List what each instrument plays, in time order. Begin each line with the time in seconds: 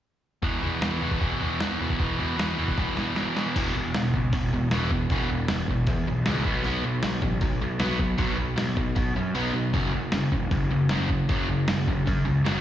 0.42 overdriven electric guitar E2 B2 E3, kick, floor tom
0.62 overdriven electric guitar E2 B2 E3, floor tom
0.82 overdriven electric guitar E2 B2 E3, snare, floor tom
1.02 overdriven electric guitar E2 B2 E3, floor tom
1.11 kick
1.21 overdriven electric guitar E2 B2 E3, kick, floor tom
1.41 overdriven electric guitar E2 B2 E3, floor tom
1.60 overdriven electric guitar E2 B2 E3, snare, floor tom
1.80 overdriven electric guitar E2 B2 E3, floor tom
1.90 kick
1.99 overdriven electric guitar E2 B2 E3, kick, floor tom
2.19 overdriven electric guitar E2 B2 E3, floor tom
2.37 overdriven electric guitar E2 B2 E3, snare, floor tom
2.58 overdriven electric guitar E2 B2 E3, floor tom
2.68 kick
2.78 overdriven electric guitar E2 B2 E3, kick, snare
2.97 overdriven electric guitar E2 B2 E3, snare
3.16 overdriven electric guitar E2 B2 E3, snare
3.36 overdriven electric guitar E2 B2 E3, snare
3.56 picked electric bass E1, overdriven electric guitar E2 B2 E3, kick, open hi-hat, crash
3.75 picked electric bass E1, overdriven electric guitar E2 B2
3.94 picked electric bass E1, overdriven electric guitar E2 B2, snare, open hi-hat
4.14 picked electric bass C#2, overdriven electric guitar E2 B2, kick
4.33 picked electric bass E1, overdriven electric guitar E2 B2, kick, open hi-hat
4.53 picked electric bass E1, overdriven electric guitar E2 B2
4.71 picked electric bass E1, overdriven electric guitar E2 B2 E3, snare, open hi-hat
4.91 overdriven electric guitar E2 B2, kick
5.10 picked electric bass E1, overdriven electric guitar E2 B2 E3, kick, open hi-hat
5.31 overdriven electric guitar E2 B2
5.48 picked electric bass E1, overdriven electric guitar E2 B2, snare, open hi-hat
5.68 picked electric bass E1, overdriven electric guitar E2 B2, kick
5.87 picked electric bass E2, overdriven electric guitar E2 B2, kick, open hi-hat
6.07 picked electric bass B1, overdriven electric guitar E2 B2
6.26 picked electric bass C#2, overdriven electric guitar E2 B2 E3, snare, open hi-hat
6.45 picked electric bass B1, overdriven electric guitar B2 F#3 B3, kick
6.64 picked electric bass B1, overdriven electric guitar B2 F#3 B3, open hi-hat
6.84 picked electric bass B1, overdriven electric guitar B2 F#3
7.03 picked electric bass B1, overdriven electric guitar B2 F#3, snare, open hi-hat
7.22 picked electric bass A1, overdriven electric guitar B2 F#3, kick
7.41 picked electric bass B1, overdriven electric guitar B2 F#3, kick, open hi-hat
7.61 picked electric bass B1, overdriven electric guitar B2 F#3
7.79 picked electric bass B1, overdriven electric guitar B2 F#3 B3, snare, open hi-hat
7.99 overdriven electric guitar B2 F#3, kick
8.18 picked electric bass B1, overdriven electric guitar B2 F#3 B3, kick, open hi-hat
8.38 overdriven electric guitar B2 F#3
8.56 picked electric bass B1, overdriven electric guitar B2 F#3, snare, open hi-hat
8.76 picked electric bass B1, overdriven electric guitar B2 F#3, kick
8.95 overdriven electric guitar B2 F#3, picked electric bass B2, kick, open hi-hat
9.15 picked electric bass F#2, overdriven electric guitar B2 F#3
9.34 picked electric bass B1, overdriven electric guitar B2 F#3 B3, open hi-hat
9.53 picked electric bass B1, overdriven electric guitar B2 F#3
9.73 picked electric bass F#1, overdriven electric guitar F#2 C#3 F#3, kick, open hi-hat
9.94 picked electric bass F#1, overdriven electric guitar F#2 C#3
10.12 picked electric bass F#1, overdriven electric guitar F#2 C#3, snare, open hi-hat
10.32 picked electric bass E1, overdriven electric guitar F#2 C#3, kick
10.51 picked electric bass F#1, overdriven electric guitar F#2 C#3, kick, open hi-hat
10.71 picked electric bass F#1, overdriven electric guitar F#2 C#3
10.89 picked electric bass F#1, overdriven electric guitar F#2 C#3 F#3, snare, open hi-hat
11.08 overdriven electric guitar F#2 C#3, kick
11.29 picked electric bass F#1, overdriven electric guitar F#2 C#3 F#3, kick, open hi-hat
11.48 overdriven electric guitar F#2 C#3
11.68 picked electric bass F#1, overdriven electric guitar F#2 C#3, snare, open hi-hat
11.87 picked electric bass F#1, overdriven electric guitar F#2 C#3, kick
12.06 overdriven electric guitar F#2 C#3, picked electric bass F#2, kick, open hi-hat
12.25 picked electric bass C#2, overdriven electric guitar F#2 C#3
12.45 picked electric bass F#1, overdriven electric guitar F#2 C#3 F#3, snare, open hi-hat